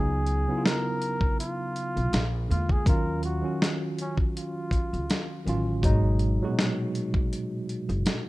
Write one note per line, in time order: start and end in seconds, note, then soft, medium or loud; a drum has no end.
0.00 0.44 C#2 loud
0.00 0.27 C#3 medium
0.00 0.27 F#3 medium
0.00 0.28 B3 medium
0.00 0.28 D#4 medium
0.00 0.66 G#4 loud
0.27 closed hi-hat medium
0.47 1.45 C#3 medium
0.47 1.46 F#3 medium
0.47 1.46 B3 medium
0.47 0.55 E4 medium
0.58 1.50 F4 medium
0.65 1.39 A#4 loud
0.65 snare loud
0.65 closed hi-hat medium
1.02 closed hi-hat medium
1.21 kick medium
1.40 2.34 F4 loud
1.40 closed hi-hat loud
1.76 closed hi-hat medium
1.96 2.11 B1 medium
1.96 closed hi-hat soft
2.13 2.47 A#1 loud
2.13 snare loud
2.13 closed hi-hat medium
2.48 2.84 E2 medium
2.48 2.75 D3 medium
2.48 2.76 G#3 medium
2.48 2.76 A#3 medium
2.48 2.73 F4 medium
2.48 2.77 F4 medium
2.48 closed hi-hat medium
2.69 2.89 G#4 medium
2.69 kick medium
2.86 3.40 D#2 loud
2.86 3.23 D#3 medium
2.86 3.24 F#3 medium
2.86 3.24 C#4 medium
2.86 3.25 F4 loud
2.86 3.24 A#4 loud
2.86 kick loud
2.86 closed hi-hat medium
3.23 3.69 F#4 medium
3.23 closed hi-hat medium
3.41 4.40 D#3 medium
3.41 4.41 F#3 medium
3.41 4.42 C#4 medium
3.45 4.42 F#4 medium
3.62 snare loud
3.62 closed hi-hat medium
3.98 4.17 C#4 medium
3.98 closed hi-hat medium
4.17 kick medium
4.37 5.43 F4 medium
4.37 closed hi-hat medium
4.71 kick medium
4.71 closed hi-hat medium
4.93 5.08 C#2 medium
4.93 closed hi-hat soft
5.10 snare loud
5.10 closed hi-hat medium
5.45 5.80 A1 medium
5.45 5.72 D#3 medium
5.45 5.73 F#3 medium
5.45 5.73 C#4 medium
5.45 5.74 F4 medium
5.45 closed hi-hat medium
5.81 6.37 G#1 loud
5.81 6.19 B2 loud
5.81 6.20 F#3 loud
5.81 6.20 G#3 loud
5.81 6.21 D#4 loud
5.81 kick loud
5.81 closed hi-hat medium
6.19 closed hi-hat medium
6.41 6.47 A#2 medium
6.41 7.39 F#3 medium
6.41 7.40 G#3 medium
6.41 7.40 F#4 medium
6.48 7.42 B2 medium
6.59 snare loud
6.59 closed hi-hat medium
6.95 closed hi-hat medium
7.14 kick medium
7.33 closed hi-hat medium
7.69 closed hi-hat medium
7.89 8.04 F#1 medium
7.89 closed hi-hat soft
8.06 snare loud
8.06 closed hi-hat medium